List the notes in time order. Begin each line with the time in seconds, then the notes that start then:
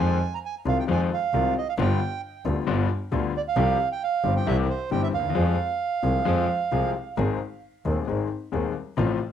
Already playing: F2 D#3 F3 G#3 C4 F4 G#5
0.00 F2
0.34 A#5
0.46 G#5
0.65 C2 C3 D#3 G#3 C4 F4 F5
0.80 G5
0.88 F2 D#3 F3 G#3 C4 F4 G#5
1.13 F5
1.33 C2 C3 D#3 G#3 C4 F4
1.58 D#5
1.69 F5
1.78 G1 G2 D3 G3 B3 F4 G5
2.45 D2 D3 G3 B3 F4
2.67 G1 G2 D3 G3 B3 F4
3.12 D2 D3 G3 B3 F4
3.37 D5
3.48 F5
3.56 C2 C3 F3 G3 C4 G4
3.92 G5
4.04 F5
4.23 G1 G2 F3 G3 C4 G4
4.37 G5
4.46 C2 C3 E3 G3 C4 G4 E5
4.70 C5
4.91 G1 G2 E3 G3 C4 G4 G5
5.03 E5
5.14 D#2 F5
5.19 D2
5.24 D#2
5.30 E2
5.35 F2 F3 G#3 C4 G#4
6.02 C2 C3 F3 G#3 C4 G#4
6.25 F2 F3 G#3 C4 G#4
6.72 C2 C3 F3 G#3 C4 G#4
7.17 G#1 G#2 D#3 G#3 C4 G#4
7.85 D#1 D#2 D#3 G#3 C4 G#4
8.07 G#1 G#2 D#3 G#3 C4 G#4
8.52 D#1 D#2 D#3 G#3 C4 G#4
8.97 A1 A2 C3 F3 A3 F4